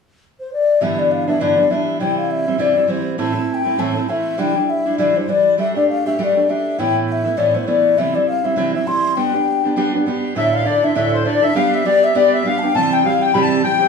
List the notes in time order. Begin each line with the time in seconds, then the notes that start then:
0.40 C5
0.53 D5
0.81 G2 D3 E3 G3 B3 D4 E5
0.99 D5
1.11 F5
1.28 E3 G3 B3 D4 E5
1.40 G2 D3 E3 G3 B3 D4 D5
1.57 E3 G3 B3 D4
1.70 E3 G3 B3 D4 E5
2.00 C3 E3 G3 C4 E4 G5
2.18 F5
2.31 E5
2.47 G3 C4 E4
2.58 C3 E3 G3 C4 E4 D5
2.76 G3 C4 E4
2.87 E3 G3 C4 E4 C5
3.18 A2 E3 A3 C4 E4 A5
3.34 A3 C4 E4
3.50 G5 A5
3.65 A3 C4 E4
3.78 A2 E3 A3 C4 E4 A5
3.95 A3 C4 E4
4.08 E3 A3 C4 E4 E5
4.38 C3 E3 G3 D4 E4 G5
4.56 G3 D4 E4
4.70 E5
4.86 G3 D4 E4
4.98 C3 E3 G3 D4 E4 D5
5.15 G3 D4 E4 C5
5.28 E3 G3 D4 E4 D5
5.58 G3 A3 D4 G4 E5
5.75 A3 D4 G4 D5
5.89 F5
6.06 A3 D4 G4 E5
6.19 G3 A3 D4 G4 E5
6.24 D5
6.36 A3 D4 G4
6.48 G3 A3 D4 G4 E5
6.79 A2 E3 A3 B3 E4 G5
7.08 G5
7.12 E5
7.24 A3 B3 E4
7.37 A2 E3 A3 B3 E4 D5
7.54 A3 B3 E4 C5
7.67 E3 A3 B3 E4 D5
7.98 C3 E3 G3 C4 E4 E5
8.14 G3 C4 E4 D5
8.28 F5
8.43 G3 C4 E4 E5
8.56 C3 E3 G3 C4 E4
8.74 G3 C4 E4 E5
8.86 E3 G3 C4 E4 C6
9.16 G3 B3 D4 G4 G5
9.33 B3 D4 G4
9.64 B3 D4 G4
9.76 G3 B3 D4 G4
9.94 B3 D4 G4
10.06 G3 B3 D4 G4
10.35 D2 A2 D3 D4 E4 A4 E5
10.53 F5
10.65 D3 D4 E4 A4 D5
10.82 D3 D4 E4 A4 E5
10.95 D2 A2 D3 D4 E4 A4 E5
11.13 C5
11.25 D3 D4 E4 A4 D5
11.42 D3 D4 E4 A4 E5
11.55 G3 B3 D4 G4 F5
11.72 E5
11.85 G3 B3 D4 G4 D5
12.03 E5
12.15 G3 B3 D4 G4 D5
12.33 E5
12.44 G3 B3 D4 G4 F5
12.59 G4 A5
12.64 B3 D4 G5
12.75 C3 E3 G3 C4 G4 A5
12.92 G5
13.04 E3 G3 C4 G4 F5
13.21 G5
13.34 C3 E3 G3 C4 G4 B5
13.42 A5
13.63 E3 G3 C4 G4 G5
13.79 G3 C4 G4